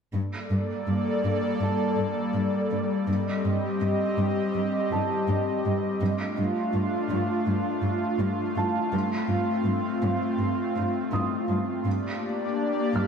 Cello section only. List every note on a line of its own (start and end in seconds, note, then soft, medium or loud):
0.14 0.22 G2 soft
0.51 0.59 G2 soft
0.87 0.95 G2 soft
1.24 1.32 G2 soft
1.60 1.68 G2 soft
1.97 2.05 G2 soft
2.34 2.42 G2 soft
2.71 2.79 G2 soft
3.08 3.16 G2 soft
3.45 3.53 G2 soft
3.81 3.89 G2 soft
4.18 4.26 G2 soft
4.55 4.63 G2 soft
4.92 5.00 G2 soft
5.29 5.37 G2 medium
5.65 5.73 G2 soft
6.01 6.09 G2 soft
6.37 6.45 G2 soft
6.73 6.81 G2 soft
7.10 7.18 G2 medium
7.46 7.54 G2 soft
7.83 7.91 G2 soft
8.20 8.28 G2 medium
8.56 8.64 G2 soft
8.93 9.01 G2 medium
9.29 9.37 G2 soft
9.65 9.73 G2 soft
10.02 10.10 G2 medium
10.39 10.47 G2 soft
10.76 10.84 G2 soft
11.12 11.20 G2 soft
11.49 11.57 G2 soft
11.85 11.93 G2 soft
12.95 13.03 G2 soft